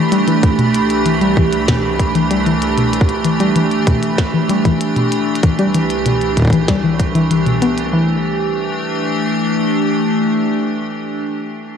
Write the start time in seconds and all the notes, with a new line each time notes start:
Already playing: E3 A3 D4 G4 B5
0.12 G3, closed hi-hat
0.28 E3, closed hi-hat
0.43 C2, kick, closed hi-hat
0.59 B2, closed hi-hat
0.74 closed hi-hat
0.90 closed hi-hat
1.06 E3, closed hi-hat
1.21 G3, closed hi-hat
1.37 E3, kick
1.53 closed hi-hat
1.68 B2, kick, snare, closed hi-hat
1.99 kick, closed hi-hat
2.15 E3, closed hi-hat
2.31 G3, closed hi-hat
2.46 E3, closed hi-hat
2.62 closed hi-hat
2.78 B2, closed hi-hat
2.93 closed hi-hat
3.01 kick
3.09 closed hi-hat
3.25 E3, closed hi-hat
3.40 G3, closed hi-hat
3.56 E3, closed hi-hat
3.71 closed hi-hat
3.87 B2, kick, closed hi-hat
4.03 closed hi-hat
4.18 kick, snare, closed hi-hat
4.34 E3
4.50 G3, closed hi-hat
4.65 E3, kick, closed hi-hat
4.81 closed hi-hat
4.96 B2, closed hi-hat
5.12 closed hi-hat
5.35 closed hi-hat
5.43 C2 E3, kick, closed hi-hat
5.59 G3, closed hi-hat
5.75 E3, closed hi-hat
5.90 closed hi-hat
6.06 B2, closed hi-hat
6.21 closed hi-hat
6.37 kick, closed hi-hat
6.40 kick
6.42 kick
6.45 kick
6.47 kick
6.50 E3, kick, closed hi-hat
6.68 G3, kick, snare, closed hi-hat
6.84 E3
7.00 kick, closed hi-hat
7.15 E3, closed hi-hat
7.31 E3, closed hi-hat
7.46 B2, closed hi-hat
7.62 B3, closed hi-hat
7.78 closed hi-hat
7.93 E3
8.03 A3
8.12 D4
8.22 G4